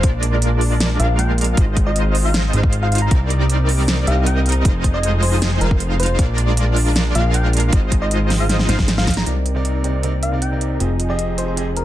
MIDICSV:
0, 0, Header, 1, 7, 480
1, 0, Start_track
1, 0, Key_signature, -3, "minor"
1, 0, Tempo, 384615
1, 45, Time_signature, 4, 2, 24, 8
1, 14785, End_track
2, 0, Start_track
2, 0, Title_t, "Soft synth lead"
2, 0, Program_c, 0, 80
2, 1243, Note_on_c, 0, 77, 96
2, 1431, Note_off_c, 0, 77, 0
2, 1482, Note_on_c, 0, 79, 96
2, 1670, Note_off_c, 0, 79, 0
2, 2328, Note_on_c, 0, 75, 95
2, 2513, Note_off_c, 0, 75, 0
2, 2809, Note_on_c, 0, 77, 94
2, 2993, Note_off_c, 0, 77, 0
2, 3528, Note_on_c, 0, 77, 89
2, 3603, Note_off_c, 0, 77, 0
2, 3646, Note_on_c, 0, 77, 78
2, 3724, Note_off_c, 0, 77, 0
2, 3768, Note_on_c, 0, 82, 92
2, 3843, Note_off_c, 0, 82, 0
2, 3885, Note_on_c, 0, 82, 79
2, 3963, Note_off_c, 0, 82, 0
2, 5086, Note_on_c, 0, 77, 97
2, 5273, Note_off_c, 0, 77, 0
2, 5323, Note_on_c, 0, 79, 96
2, 5511, Note_off_c, 0, 79, 0
2, 6164, Note_on_c, 0, 75, 97
2, 6351, Note_off_c, 0, 75, 0
2, 6521, Note_on_c, 0, 72, 94
2, 6601, Note_off_c, 0, 72, 0
2, 6645, Note_on_c, 0, 72, 76
2, 6721, Note_off_c, 0, 72, 0
2, 7003, Note_on_c, 0, 70, 98
2, 7191, Note_off_c, 0, 70, 0
2, 7484, Note_on_c, 0, 72, 94
2, 7773, Note_off_c, 0, 72, 0
2, 8926, Note_on_c, 0, 77, 94
2, 9113, Note_off_c, 0, 77, 0
2, 9166, Note_on_c, 0, 79, 97
2, 9353, Note_off_c, 0, 79, 0
2, 10007, Note_on_c, 0, 75, 94
2, 10192, Note_off_c, 0, 75, 0
2, 10486, Note_on_c, 0, 77, 97
2, 10672, Note_off_c, 0, 77, 0
2, 11207, Note_on_c, 0, 77, 90
2, 11282, Note_off_c, 0, 77, 0
2, 11323, Note_on_c, 0, 77, 75
2, 11402, Note_off_c, 0, 77, 0
2, 11446, Note_on_c, 0, 82, 94
2, 11522, Note_off_c, 0, 82, 0
2, 11561, Note_on_c, 0, 82, 76
2, 11641, Note_off_c, 0, 82, 0
2, 12766, Note_on_c, 0, 77, 90
2, 12953, Note_off_c, 0, 77, 0
2, 13006, Note_on_c, 0, 79, 91
2, 13193, Note_off_c, 0, 79, 0
2, 13849, Note_on_c, 0, 75, 90
2, 14033, Note_off_c, 0, 75, 0
2, 14207, Note_on_c, 0, 72, 88
2, 14284, Note_off_c, 0, 72, 0
2, 14328, Note_on_c, 0, 72, 73
2, 14403, Note_off_c, 0, 72, 0
2, 14687, Note_on_c, 0, 70, 92
2, 14785, Note_off_c, 0, 70, 0
2, 14785, End_track
3, 0, Start_track
3, 0, Title_t, "Supersaw synth"
3, 0, Program_c, 1, 81
3, 44, Note_on_c, 1, 56, 95
3, 44, Note_on_c, 1, 62, 86
3, 44, Note_on_c, 1, 65, 85
3, 44, Note_on_c, 1, 74, 101
3, 45, Note_on_c, 1, 70, 87
3, 1216, Note_off_c, 1, 56, 0
3, 1216, Note_off_c, 1, 62, 0
3, 1216, Note_off_c, 1, 65, 0
3, 1216, Note_off_c, 1, 74, 0
3, 1217, Note_off_c, 1, 70, 0
3, 1244, Note_on_c, 1, 62, 77
3, 1244, Note_on_c, 1, 70, 79
3, 1245, Note_on_c, 1, 56, 86
3, 1245, Note_on_c, 1, 65, 80
3, 1245, Note_on_c, 1, 77, 96
3, 1936, Note_off_c, 1, 62, 0
3, 1936, Note_off_c, 1, 70, 0
3, 1937, Note_off_c, 1, 56, 0
3, 1937, Note_off_c, 1, 65, 0
3, 1937, Note_off_c, 1, 77, 0
3, 1963, Note_on_c, 1, 56, 93
3, 1964, Note_on_c, 1, 63, 86
3, 1964, Note_on_c, 1, 65, 87
3, 1964, Note_on_c, 1, 72, 87
3, 1964, Note_on_c, 1, 75, 107
3, 3136, Note_off_c, 1, 56, 0
3, 3136, Note_off_c, 1, 63, 0
3, 3136, Note_off_c, 1, 65, 0
3, 3136, Note_off_c, 1, 72, 0
3, 3136, Note_off_c, 1, 75, 0
3, 3164, Note_on_c, 1, 65, 76
3, 3164, Note_on_c, 1, 72, 79
3, 3165, Note_on_c, 1, 56, 88
3, 3165, Note_on_c, 1, 63, 81
3, 3165, Note_on_c, 1, 77, 91
3, 3856, Note_off_c, 1, 63, 0
3, 3856, Note_off_c, 1, 65, 0
3, 3856, Note_off_c, 1, 72, 0
3, 3856, Note_off_c, 1, 77, 0
3, 3857, Note_off_c, 1, 56, 0
3, 3884, Note_on_c, 1, 55, 97
3, 3884, Note_on_c, 1, 60, 87
3, 3884, Note_on_c, 1, 63, 86
3, 3884, Note_on_c, 1, 70, 87
3, 3884, Note_on_c, 1, 74, 105
3, 5056, Note_off_c, 1, 55, 0
3, 5056, Note_off_c, 1, 60, 0
3, 5056, Note_off_c, 1, 63, 0
3, 5056, Note_off_c, 1, 70, 0
3, 5056, Note_off_c, 1, 74, 0
3, 5083, Note_on_c, 1, 55, 88
3, 5083, Note_on_c, 1, 60, 78
3, 5083, Note_on_c, 1, 63, 77
3, 5083, Note_on_c, 1, 70, 79
3, 5083, Note_on_c, 1, 75, 93
3, 5776, Note_off_c, 1, 55, 0
3, 5776, Note_off_c, 1, 60, 0
3, 5776, Note_off_c, 1, 63, 0
3, 5776, Note_off_c, 1, 70, 0
3, 5776, Note_off_c, 1, 75, 0
3, 5803, Note_on_c, 1, 63, 87
3, 5803, Note_on_c, 1, 65, 86
3, 5803, Note_on_c, 1, 72, 88
3, 5803, Note_on_c, 1, 75, 108
3, 6975, Note_off_c, 1, 63, 0
3, 6976, Note_off_c, 1, 65, 0
3, 6976, Note_off_c, 1, 72, 0
3, 6976, Note_off_c, 1, 75, 0
3, 7003, Note_on_c, 1, 72, 80
3, 7004, Note_on_c, 1, 56, 83
3, 7004, Note_on_c, 1, 63, 79
3, 7004, Note_on_c, 1, 65, 77
3, 7004, Note_on_c, 1, 77, 94
3, 7696, Note_off_c, 1, 56, 0
3, 7696, Note_off_c, 1, 63, 0
3, 7696, Note_off_c, 1, 65, 0
3, 7696, Note_off_c, 1, 72, 0
3, 7696, Note_off_c, 1, 77, 0
3, 7722, Note_on_c, 1, 56, 94
3, 7722, Note_on_c, 1, 62, 84
3, 7722, Note_on_c, 1, 65, 88
3, 7722, Note_on_c, 1, 70, 85
3, 7722, Note_on_c, 1, 74, 108
3, 8895, Note_off_c, 1, 56, 0
3, 8895, Note_off_c, 1, 62, 0
3, 8895, Note_off_c, 1, 65, 0
3, 8895, Note_off_c, 1, 70, 0
3, 8895, Note_off_c, 1, 74, 0
3, 8923, Note_on_c, 1, 56, 85
3, 8923, Note_on_c, 1, 62, 78
3, 8923, Note_on_c, 1, 65, 80
3, 8923, Note_on_c, 1, 70, 77
3, 8923, Note_on_c, 1, 77, 94
3, 9616, Note_off_c, 1, 56, 0
3, 9616, Note_off_c, 1, 62, 0
3, 9616, Note_off_c, 1, 65, 0
3, 9616, Note_off_c, 1, 70, 0
3, 9616, Note_off_c, 1, 77, 0
3, 9644, Note_on_c, 1, 56, 94
3, 9644, Note_on_c, 1, 63, 88
3, 9644, Note_on_c, 1, 65, 86
3, 9644, Note_on_c, 1, 72, 86
3, 9644, Note_on_c, 1, 75, 103
3, 10816, Note_off_c, 1, 56, 0
3, 10816, Note_off_c, 1, 63, 0
3, 10816, Note_off_c, 1, 65, 0
3, 10816, Note_off_c, 1, 72, 0
3, 10816, Note_off_c, 1, 75, 0
3, 10844, Note_on_c, 1, 56, 100
3, 10844, Note_on_c, 1, 63, 90
3, 10844, Note_on_c, 1, 72, 92
3, 10844, Note_on_c, 1, 77, 112
3, 10845, Note_on_c, 1, 65, 91
3, 10937, Note_off_c, 1, 56, 0
3, 10937, Note_off_c, 1, 63, 0
3, 10937, Note_off_c, 1, 77, 0
3, 10938, Note_off_c, 1, 65, 0
3, 10938, Note_off_c, 1, 72, 0
3, 10965, Note_on_c, 1, 56, 87
3, 10966, Note_on_c, 1, 63, 82
3, 10966, Note_on_c, 1, 75, 99
3, 11536, Note_off_c, 1, 56, 0
3, 11536, Note_off_c, 1, 63, 0
3, 11536, Note_off_c, 1, 75, 0
3, 11562, Note_on_c, 1, 60, 76
3, 11562, Note_on_c, 1, 63, 68
3, 11562, Note_on_c, 1, 70, 71
3, 11562, Note_on_c, 1, 74, 73
3, 11562, Note_on_c, 1, 79, 86
3, 13455, Note_off_c, 1, 60, 0
3, 13455, Note_off_c, 1, 63, 0
3, 13455, Note_off_c, 1, 70, 0
3, 13455, Note_off_c, 1, 74, 0
3, 13455, Note_off_c, 1, 79, 0
3, 13484, Note_on_c, 1, 60, 79
3, 13484, Note_on_c, 1, 65, 70
3, 13484, Note_on_c, 1, 68, 73
3, 13484, Note_on_c, 1, 75, 69
3, 13485, Note_on_c, 1, 80, 84
3, 14785, Note_off_c, 1, 60, 0
3, 14785, Note_off_c, 1, 65, 0
3, 14785, Note_off_c, 1, 68, 0
3, 14785, Note_off_c, 1, 75, 0
3, 14785, Note_off_c, 1, 80, 0
3, 14785, End_track
4, 0, Start_track
4, 0, Title_t, "Grand piano"
4, 0, Program_c, 2, 0
4, 11551, Note_on_c, 2, 48, 71
4, 11557, Note_on_c, 2, 60, 64
4, 11564, Note_on_c, 2, 63, 62
4, 11571, Note_on_c, 2, 70, 65
4, 11576, Note_on_c, 2, 74, 76
4, 11648, Note_off_c, 2, 48, 0
4, 11651, Note_off_c, 2, 60, 0
4, 11654, Note_off_c, 2, 63, 0
4, 11658, Note_off_c, 2, 70, 0
4, 11660, Note_off_c, 2, 74, 0
4, 11913, Note_on_c, 2, 48, 85
4, 11919, Note_on_c, 2, 60, 79
4, 11925, Note_on_c, 2, 63, 78
4, 11932, Note_on_c, 2, 70, 81
4, 11938, Note_on_c, 2, 74, 98
4, 12249, Note_off_c, 2, 48, 0
4, 12252, Note_off_c, 2, 60, 0
4, 12255, Note_off_c, 2, 63, 0
4, 12259, Note_off_c, 2, 70, 0
4, 12262, Note_off_c, 2, 74, 0
4, 12273, Note_on_c, 2, 48, 75
4, 12279, Note_on_c, 2, 60, 70
4, 12286, Note_on_c, 2, 63, 72
4, 12292, Note_on_c, 2, 70, 68
4, 12298, Note_on_c, 2, 74, 84
4, 12491, Note_off_c, 2, 48, 0
4, 12494, Note_off_c, 2, 60, 0
4, 12497, Note_off_c, 2, 63, 0
4, 12500, Note_off_c, 2, 70, 0
4, 12503, Note_off_c, 2, 74, 0
4, 12514, Note_on_c, 2, 48, 86
4, 12520, Note_on_c, 2, 60, 82
4, 12527, Note_on_c, 2, 63, 79
4, 12533, Note_on_c, 2, 70, 80
4, 12539, Note_on_c, 2, 74, 95
4, 12609, Note_off_c, 2, 48, 0
4, 12612, Note_off_c, 2, 60, 0
4, 12616, Note_off_c, 2, 63, 0
4, 12619, Note_off_c, 2, 70, 0
4, 12622, Note_off_c, 2, 74, 0
4, 12875, Note_on_c, 2, 48, 76
4, 12882, Note_on_c, 2, 60, 68
4, 12888, Note_on_c, 2, 63, 66
4, 12894, Note_on_c, 2, 70, 67
4, 12900, Note_on_c, 2, 74, 82
4, 12967, Note_off_c, 2, 48, 0
4, 12971, Note_off_c, 2, 60, 0
4, 12974, Note_off_c, 2, 63, 0
4, 12977, Note_off_c, 2, 70, 0
4, 12980, Note_off_c, 2, 74, 0
4, 13116, Note_on_c, 2, 48, 71
4, 13122, Note_on_c, 2, 60, 64
4, 13127, Note_on_c, 2, 63, 64
4, 13134, Note_on_c, 2, 70, 62
4, 13140, Note_on_c, 2, 74, 75
4, 13451, Note_off_c, 2, 48, 0
4, 13454, Note_off_c, 2, 60, 0
4, 13456, Note_off_c, 2, 63, 0
4, 13460, Note_off_c, 2, 70, 0
4, 13463, Note_off_c, 2, 74, 0
4, 13472, Note_on_c, 2, 53, 71
4, 13479, Note_on_c, 2, 60, 64
4, 13486, Note_on_c, 2, 67, 65
4, 13491, Note_on_c, 2, 68, 64
4, 13498, Note_on_c, 2, 75, 77
4, 13568, Note_off_c, 2, 53, 0
4, 13572, Note_off_c, 2, 60, 0
4, 13575, Note_off_c, 2, 67, 0
4, 13578, Note_off_c, 2, 68, 0
4, 13581, Note_off_c, 2, 75, 0
4, 13835, Note_on_c, 2, 53, 87
4, 13842, Note_on_c, 2, 60, 81
4, 13848, Note_on_c, 2, 67, 80
4, 13854, Note_on_c, 2, 68, 82
4, 13861, Note_on_c, 2, 75, 97
4, 14171, Note_off_c, 2, 53, 0
4, 14174, Note_off_c, 2, 60, 0
4, 14177, Note_off_c, 2, 67, 0
4, 14180, Note_off_c, 2, 68, 0
4, 14183, Note_off_c, 2, 75, 0
4, 14193, Note_on_c, 2, 53, 75
4, 14199, Note_on_c, 2, 60, 70
4, 14205, Note_on_c, 2, 67, 70
4, 14211, Note_on_c, 2, 68, 70
4, 14217, Note_on_c, 2, 75, 86
4, 14411, Note_off_c, 2, 53, 0
4, 14414, Note_off_c, 2, 60, 0
4, 14417, Note_off_c, 2, 67, 0
4, 14420, Note_off_c, 2, 68, 0
4, 14423, Note_off_c, 2, 75, 0
4, 14432, Note_on_c, 2, 53, 88
4, 14439, Note_on_c, 2, 60, 78
4, 14445, Note_on_c, 2, 67, 82
4, 14452, Note_on_c, 2, 68, 83
4, 14456, Note_on_c, 2, 75, 97
4, 14528, Note_off_c, 2, 53, 0
4, 14531, Note_off_c, 2, 60, 0
4, 14535, Note_off_c, 2, 67, 0
4, 14538, Note_off_c, 2, 68, 0
4, 14540, Note_off_c, 2, 75, 0
4, 14785, End_track
5, 0, Start_track
5, 0, Title_t, "String section"
5, 0, Program_c, 3, 48
5, 44, Note_on_c, 3, 58, 80
5, 45, Note_on_c, 3, 62, 95
5, 46, Note_on_c, 3, 56, 88
5, 1945, Note_off_c, 3, 58, 0
5, 1946, Note_off_c, 3, 62, 0
5, 1965, Note_on_c, 3, 60, 80
5, 1966, Note_on_c, 3, 65, 93
5, 3847, Note_off_c, 3, 56, 0
5, 3865, Note_off_c, 3, 60, 0
5, 3866, Note_off_c, 3, 65, 0
5, 3885, Note_on_c, 3, 48, 84
5, 3885, Note_on_c, 3, 58, 79
5, 3886, Note_on_c, 3, 63, 100
5, 5786, Note_off_c, 3, 48, 0
5, 5786, Note_off_c, 3, 58, 0
5, 5802, Note_on_c, 3, 60, 78
5, 5802, Note_on_c, 3, 68, 98
5, 5804, Note_on_c, 3, 53, 88
5, 7687, Note_off_c, 3, 63, 0
5, 7704, Note_off_c, 3, 60, 0
5, 7704, Note_off_c, 3, 68, 0
5, 7705, Note_off_c, 3, 53, 0
5, 7723, Note_on_c, 3, 58, 80
5, 7724, Note_on_c, 3, 56, 89
5, 7725, Note_on_c, 3, 62, 95
5, 9625, Note_off_c, 3, 58, 0
5, 9625, Note_off_c, 3, 62, 0
5, 9639, Note_on_c, 3, 60, 82
5, 9641, Note_on_c, 3, 65, 94
5, 11526, Note_off_c, 3, 56, 0
5, 11543, Note_off_c, 3, 60, 0
5, 11543, Note_off_c, 3, 65, 0
5, 11566, Note_on_c, 3, 48, 78
5, 11566, Note_on_c, 3, 58, 72
5, 11567, Note_on_c, 3, 74, 70
5, 11568, Note_on_c, 3, 63, 86
5, 13466, Note_off_c, 3, 48, 0
5, 13466, Note_off_c, 3, 58, 0
5, 13466, Note_off_c, 3, 74, 0
5, 13485, Note_on_c, 3, 60, 70
5, 13486, Note_on_c, 3, 53, 78
5, 13486, Note_on_c, 3, 68, 86
5, 14785, Note_off_c, 3, 53, 0
5, 14785, Note_off_c, 3, 60, 0
5, 14785, Note_off_c, 3, 63, 0
5, 14785, Note_off_c, 3, 68, 0
5, 14785, End_track
6, 0, Start_track
6, 0, Title_t, "Analog synth bass"
6, 0, Program_c, 4, 38
6, 45, Note_on_c, 4, 34, 100
6, 1221, Note_off_c, 4, 34, 0
6, 1245, Note_on_c, 4, 34, 96
6, 1941, Note_off_c, 4, 34, 0
6, 1966, Note_on_c, 4, 32, 101
6, 3142, Note_off_c, 4, 32, 0
6, 3165, Note_on_c, 4, 32, 98
6, 3861, Note_off_c, 4, 32, 0
6, 3885, Note_on_c, 4, 36, 100
6, 5061, Note_off_c, 4, 36, 0
6, 5084, Note_on_c, 4, 36, 100
6, 5781, Note_off_c, 4, 36, 0
6, 5804, Note_on_c, 4, 29, 98
6, 6981, Note_off_c, 4, 29, 0
6, 7004, Note_on_c, 4, 29, 99
6, 7701, Note_off_c, 4, 29, 0
6, 7724, Note_on_c, 4, 34, 101
6, 8901, Note_off_c, 4, 34, 0
6, 8924, Note_on_c, 4, 34, 98
6, 9621, Note_off_c, 4, 34, 0
6, 9645, Note_on_c, 4, 32, 99
6, 10821, Note_off_c, 4, 32, 0
6, 10843, Note_on_c, 4, 32, 99
6, 10942, Note_off_c, 4, 32, 0
6, 10967, Note_on_c, 4, 32, 101
6, 11541, Note_off_c, 4, 32, 0
6, 11564, Note_on_c, 4, 36, 85
6, 13461, Note_off_c, 4, 36, 0
6, 13483, Note_on_c, 4, 29, 86
6, 14785, Note_off_c, 4, 29, 0
6, 14785, End_track
7, 0, Start_track
7, 0, Title_t, "Drums"
7, 43, Note_on_c, 9, 42, 84
7, 45, Note_on_c, 9, 36, 127
7, 167, Note_off_c, 9, 42, 0
7, 170, Note_off_c, 9, 36, 0
7, 283, Note_on_c, 9, 42, 68
7, 408, Note_off_c, 9, 42, 0
7, 524, Note_on_c, 9, 42, 85
7, 649, Note_off_c, 9, 42, 0
7, 764, Note_on_c, 9, 46, 89
7, 889, Note_off_c, 9, 46, 0
7, 1004, Note_on_c, 9, 38, 127
7, 1004, Note_on_c, 9, 42, 80
7, 1129, Note_off_c, 9, 38, 0
7, 1129, Note_off_c, 9, 42, 0
7, 1244, Note_on_c, 9, 42, 69
7, 1369, Note_off_c, 9, 42, 0
7, 1483, Note_on_c, 9, 42, 79
7, 1608, Note_off_c, 9, 42, 0
7, 1723, Note_on_c, 9, 42, 52
7, 1763, Note_off_c, 9, 42, 0
7, 1763, Note_on_c, 9, 42, 66
7, 1803, Note_off_c, 9, 42, 0
7, 1803, Note_on_c, 9, 42, 82
7, 1927, Note_off_c, 9, 42, 0
7, 1964, Note_on_c, 9, 42, 77
7, 1965, Note_on_c, 9, 36, 127
7, 2088, Note_off_c, 9, 42, 0
7, 2090, Note_off_c, 9, 36, 0
7, 2204, Note_on_c, 9, 42, 68
7, 2205, Note_on_c, 9, 36, 65
7, 2329, Note_off_c, 9, 42, 0
7, 2330, Note_off_c, 9, 36, 0
7, 2444, Note_on_c, 9, 42, 81
7, 2569, Note_off_c, 9, 42, 0
7, 2682, Note_on_c, 9, 46, 89
7, 2807, Note_off_c, 9, 46, 0
7, 2923, Note_on_c, 9, 38, 126
7, 2923, Note_on_c, 9, 42, 80
7, 3047, Note_off_c, 9, 38, 0
7, 3047, Note_off_c, 9, 42, 0
7, 3163, Note_on_c, 9, 42, 67
7, 3288, Note_off_c, 9, 42, 0
7, 3288, Note_on_c, 9, 36, 113
7, 3402, Note_on_c, 9, 42, 76
7, 3413, Note_off_c, 9, 36, 0
7, 3527, Note_off_c, 9, 42, 0
7, 3644, Note_on_c, 9, 42, 49
7, 3684, Note_off_c, 9, 42, 0
7, 3684, Note_on_c, 9, 42, 66
7, 3722, Note_off_c, 9, 42, 0
7, 3722, Note_on_c, 9, 42, 79
7, 3847, Note_off_c, 9, 42, 0
7, 3883, Note_on_c, 9, 42, 76
7, 3885, Note_on_c, 9, 36, 121
7, 4008, Note_off_c, 9, 42, 0
7, 4009, Note_off_c, 9, 36, 0
7, 4124, Note_on_c, 9, 42, 65
7, 4249, Note_off_c, 9, 42, 0
7, 4363, Note_on_c, 9, 42, 77
7, 4487, Note_off_c, 9, 42, 0
7, 4603, Note_on_c, 9, 46, 88
7, 4728, Note_off_c, 9, 46, 0
7, 4843, Note_on_c, 9, 38, 119
7, 4843, Note_on_c, 9, 42, 76
7, 4968, Note_off_c, 9, 38, 0
7, 4968, Note_off_c, 9, 42, 0
7, 5083, Note_on_c, 9, 42, 64
7, 5208, Note_off_c, 9, 42, 0
7, 5323, Note_on_c, 9, 42, 77
7, 5448, Note_off_c, 9, 42, 0
7, 5563, Note_on_c, 9, 42, 47
7, 5603, Note_off_c, 9, 42, 0
7, 5603, Note_on_c, 9, 42, 60
7, 5643, Note_off_c, 9, 42, 0
7, 5643, Note_on_c, 9, 42, 76
7, 5768, Note_off_c, 9, 42, 0
7, 5804, Note_on_c, 9, 36, 116
7, 5804, Note_on_c, 9, 42, 78
7, 5929, Note_off_c, 9, 36, 0
7, 5929, Note_off_c, 9, 42, 0
7, 6044, Note_on_c, 9, 36, 61
7, 6044, Note_on_c, 9, 42, 65
7, 6168, Note_off_c, 9, 42, 0
7, 6169, Note_off_c, 9, 36, 0
7, 6283, Note_on_c, 9, 42, 76
7, 6408, Note_off_c, 9, 42, 0
7, 6523, Note_on_c, 9, 46, 93
7, 6647, Note_off_c, 9, 46, 0
7, 6764, Note_on_c, 9, 38, 115
7, 6764, Note_on_c, 9, 42, 76
7, 6888, Note_off_c, 9, 38, 0
7, 6888, Note_off_c, 9, 42, 0
7, 7003, Note_on_c, 9, 42, 65
7, 7126, Note_on_c, 9, 36, 105
7, 7128, Note_off_c, 9, 42, 0
7, 7243, Note_on_c, 9, 42, 75
7, 7251, Note_off_c, 9, 36, 0
7, 7368, Note_off_c, 9, 42, 0
7, 7484, Note_on_c, 9, 42, 48
7, 7524, Note_off_c, 9, 42, 0
7, 7524, Note_on_c, 9, 42, 64
7, 7563, Note_off_c, 9, 42, 0
7, 7563, Note_on_c, 9, 42, 79
7, 7688, Note_off_c, 9, 42, 0
7, 7723, Note_on_c, 9, 42, 78
7, 7724, Note_on_c, 9, 36, 115
7, 7848, Note_off_c, 9, 36, 0
7, 7848, Note_off_c, 9, 42, 0
7, 7963, Note_on_c, 9, 42, 67
7, 8088, Note_off_c, 9, 42, 0
7, 8203, Note_on_c, 9, 42, 79
7, 8328, Note_off_c, 9, 42, 0
7, 8443, Note_on_c, 9, 46, 92
7, 8568, Note_off_c, 9, 46, 0
7, 8683, Note_on_c, 9, 38, 115
7, 8683, Note_on_c, 9, 42, 80
7, 8808, Note_off_c, 9, 38, 0
7, 8808, Note_off_c, 9, 42, 0
7, 8925, Note_on_c, 9, 42, 67
7, 9050, Note_off_c, 9, 42, 0
7, 9163, Note_on_c, 9, 42, 77
7, 9287, Note_off_c, 9, 42, 0
7, 9403, Note_on_c, 9, 42, 49
7, 9444, Note_off_c, 9, 42, 0
7, 9444, Note_on_c, 9, 42, 64
7, 9483, Note_off_c, 9, 42, 0
7, 9483, Note_on_c, 9, 42, 77
7, 9608, Note_off_c, 9, 42, 0
7, 9642, Note_on_c, 9, 42, 80
7, 9644, Note_on_c, 9, 36, 116
7, 9767, Note_off_c, 9, 42, 0
7, 9769, Note_off_c, 9, 36, 0
7, 9882, Note_on_c, 9, 42, 72
7, 9884, Note_on_c, 9, 36, 61
7, 10007, Note_off_c, 9, 42, 0
7, 10009, Note_off_c, 9, 36, 0
7, 10123, Note_on_c, 9, 42, 83
7, 10248, Note_off_c, 9, 42, 0
7, 10362, Note_on_c, 9, 38, 60
7, 10362, Note_on_c, 9, 46, 98
7, 10487, Note_off_c, 9, 38, 0
7, 10487, Note_off_c, 9, 46, 0
7, 10601, Note_on_c, 9, 38, 62
7, 10601, Note_on_c, 9, 42, 79
7, 10725, Note_off_c, 9, 38, 0
7, 10725, Note_on_c, 9, 38, 58
7, 10726, Note_off_c, 9, 42, 0
7, 10843, Note_off_c, 9, 38, 0
7, 10843, Note_on_c, 9, 38, 75
7, 10843, Note_on_c, 9, 42, 68
7, 10966, Note_off_c, 9, 38, 0
7, 10966, Note_on_c, 9, 38, 72
7, 10968, Note_off_c, 9, 42, 0
7, 10968, Note_on_c, 9, 36, 104
7, 11083, Note_off_c, 9, 38, 0
7, 11083, Note_on_c, 9, 38, 85
7, 11083, Note_on_c, 9, 42, 81
7, 11092, Note_off_c, 9, 36, 0
7, 11206, Note_off_c, 9, 38, 0
7, 11206, Note_on_c, 9, 38, 81
7, 11207, Note_off_c, 9, 42, 0
7, 11323, Note_off_c, 9, 38, 0
7, 11323, Note_on_c, 9, 38, 98
7, 11323, Note_on_c, 9, 42, 51
7, 11325, Note_on_c, 9, 36, 60
7, 11364, Note_off_c, 9, 42, 0
7, 11364, Note_on_c, 9, 42, 67
7, 11402, Note_off_c, 9, 42, 0
7, 11402, Note_on_c, 9, 42, 85
7, 11445, Note_off_c, 9, 38, 0
7, 11445, Note_on_c, 9, 38, 89
7, 11450, Note_off_c, 9, 36, 0
7, 11527, Note_off_c, 9, 42, 0
7, 11563, Note_on_c, 9, 42, 75
7, 11569, Note_off_c, 9, 38, 0
7, 11687, Note_off_c, 9, 42, 0
7, 11802, Note_on_c, 9, 42, 66
7, 11927, Note_off_c, 9, 42, 0
7, 12043, Note_on_c, 9, 42, 75
7, 12167, Note_off_c, 9, 42, 0
7, 12284, Note_on_c, 9, 42, 62
7, 12408, Note_off_c, 9, 42, 0
7, 12523, Note_on_c, 9, 42, 74
7, 12648, Note_off_c, 9, 42, 0
7, 12763, Note_on_c, 9, 42, 65
7, 12888, Note_off_c, 9, 42, 0
7, 13003, Note_on_c, 9, 42, 75
7, 13128, Note_off_c, 9, 42, 0
7, 13244, Note_on_c, 9, 42, 63
7, 13368, Note_off_c, 9, 42, 0
7, 13484, Note_on_c, 9, 42, 76
7, 13608, Note_off_c, 9, 42, 0
7, 13724, Note_on_c, 9, 42, 65
7, 13848, Note_off_c, 9, 42, 0
7, 13963, Note_on_c, 9, 42, 79
7, 14087, Note_off_c, 9, 42, 0
7, 14202, Note_on_c, 9, 42, 65
7, 14327, Note_off_c, 9, 42, 0
7, 14443, Note_on_c, 9, 42, 78
7, 14568, Note_off_c, 9, 42, 0
7, 14684, Note_on_c, 9, 42, 64
7, 14785, Note_off_c, 9, 42, 0
7, 14785, End_track
0, 0, End_of_file